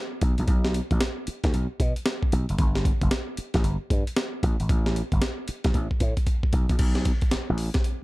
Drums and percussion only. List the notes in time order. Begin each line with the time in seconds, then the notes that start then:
0.21 kick, closed hi-hat
0.38 closed hi-hat
0.48 kick, closed hi-hat
0.65 snare
0.74 closed hi-hat
0.91 kick, closed hi-hat
1.01 snare, closed hi-hat
1.27 closed hi-hat
1.44 kick, snare, closed hi-hat
1.54 closed hi-hat
1.80 kick, closed hi-hat
1.96 closed hi-hat
2.06 snare, closed hi-hat
2.23 kick
2.32 closed hi-hat
2.49 closed hi-hat
2.58 kick, closed hi-hat
2.75 snare
2.85 kick, closed hi-hat
3.01 kick, closed hi-hat
3.11 snare, closed hi-hat
3.37 closed hi-hat
3.54 kick, snare, closed hi-hat
3.64 closed hi-hat
3.90 kick, closed hi-hat
4.07 closed hi-hat
4.17 snare, closed hi-hat
4.43 kick, closed hi-hat
4.60 closed hi-hat
4.69 kick, closed hi-hat
4.86 snare
4.96 closed hi-hat
5.12 kick, closed hi-hat
5.22 snare, closed hi-hat
5.48 closed hi-hat
5.64 kick, snare, closed hi-hat
5.74 kick, closed hi-hat
5.91 kick
6.00 kick, closed hi-hat
6.17 kick, closed hi-hat
6.27 kick, closed hi-hat
6.43 kick
6.53 kick, closed hi-hat
6.69 kick, closed hi-hat
6.79 kick, closed hi-hat, crash
6.95 snare
7.05 kick, closed hi-hat
7.21 kick, closed hi-hat
7.31 snare, closed hi-hat
7.58 open hi-hat
7.74 kick, snare, closed hi-hat
7.84 closed hi-hat